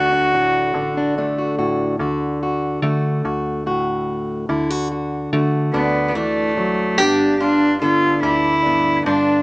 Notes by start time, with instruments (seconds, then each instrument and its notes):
Already playing: fm bass D2, steel-string acoustic guitar D3 A3 D4, cello F#4
0.12 steel-string acoustic guitar D4
0.33 steel-string acoustic guitar A2 D4
0.74 fm bass A1, steel-string acoustic guitar D3
0.97 steel-string acoustic guitar D4
1.18 steel-string acoustic guitar A3 D4
1.38 steel-string acoustic guitar F#4
1.58 steel-string acoustic guitar A2 F#4
1.99 fm bass D2, steel-string acoustic guitar D3 F#4
2.43 steel-string acoustic guitar F#4
2.82 fm bass D3, steel-string acoustic guitar A3 F#4
3.25 fm bass D2, steel-string acoustic guitar F#4
3.66 steel-string acoustic guitar A2 F#4
4.49 fm bass D2, steel-string acoustic guitar D3 E4
4.71 steel-string acoustic guitar F#4
4.92 steel-string acoustic guitar F#4
5.33 fm bass D3, steel-string acoustic guitar A3 F#4
5.73 fm bass D2, steel-string acoustic guitar D3, cello B3, resonator guitar played with a steel bar D4
6.08 cello B3, resonator guitar played with a steel bar D4
6.14 steel-string acoustic guitar E3, cello A3, resonator guitar played with a steel bar D4
6.57 steel-string acoustic guitar F#3
6.98 fm bass G1, steel-string acoustic guitar G2 B3, cello D4, resonator guitar played with a steel bar G4
7.40 cello D4, steel-string acoustic guitar D4, resonator guitar played with a steel bar F4
7.82 steel-string acoustic guitar D3 B3, cello F4, resonator guitar played with a steel bar A4
8.23 fm bass D2, steel-string acoustic guitar D4, cello E4, resonator guitar played with a steel bar G4
8.66 steel-string acoustic guitar G2 B3
9.06 fm bass G2, cello D4, steel-string acoustic guitar D4, resonator guitar played with a steel bar F4